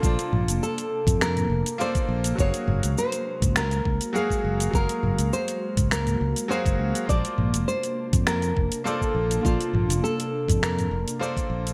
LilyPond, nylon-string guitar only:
\new Staff \with { instrumentName = "Nylon-string guitar" } { \time 4/4 \key bes \dorian \tempo 4 = 102 f'4 a'4 bes'4 c''4 | des''4 c''4 bes'4 aes'4 | bes'4 c''4 bes'4 c''4 | d''4 c''4 bes'4 a'4 |
f'4 a'4 bes'4 c''4 | }